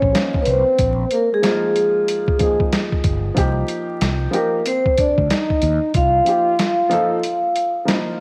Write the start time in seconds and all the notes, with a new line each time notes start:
Already playing: C#4 C#5
0.02 A#1, kick
0.13 F3 A#3 D#4 F4, snare, closed hi-hat
0.34 kick
0.42 B3 B4, closed hi-hat
0.47 C2 C4 C5
0.79 A#1, kick, closed hi-hat
1.11 A#3, closed hi-hat
1.15 A#4
1.33 G#3 G#4
1.42 F3 A#3 D#4 F4, snare, closed hi-hat
1.76 closed hi-hat
2.08 closed hi-hat
2.28 kick
2.39 F3 A#3 D#4 G#4, kick, closed hi-hat
2.60 kick
2.73 snare, closed hi-hat
2.92 kick
3.04 G1, kick, closed hi-hat
3.34 C2 F3 A#3 D#4 G4, kick, closed hi-hat
3.68 closed hi-hat
4.01 C2, snare, closed hi-hat
4.31 F3 A#3 D#4 G4, closed hi-hat
4.35 A#4
4.65 C4 C5, closed hi-hat
4.86 kick
4.98 D4 D5, kick, closed hi-hat
5.18 D2, kick
5.30 D#4 D#5, snare, closed hi-hat
5.50 kick
5.62 D#2, closed hi-hat
5.94 C2 F4 F5, kick, closed hi-hat
6.25 F3 A#3 D#4 G4, closed hi-hat
6.59 snare, closed hi-hat
6.89 F3 A#3 D#4 A4, closed hi-hat
7.23 closed hi-hat
7.56 closed hi-hat
7.85 F3 A#3 D#4 E4, snare, closed hi-hat
7.95 F4